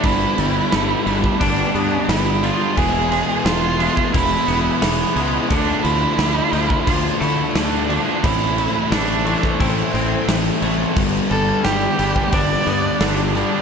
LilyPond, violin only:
\new Staff \with { instrumentName = "Violin" } { \time 4/4 \key g \mixolydian \tempo 4 = 88 e'2 d'8 d'8 e'8 f'8 | gis'4 f'4 e'4 b4 | d'8 e'4. f'8 e'8 d'4 | e'4 d'4 c'4. r8 |
r8 a'8 g'4 d''4 d'8 d'8 | }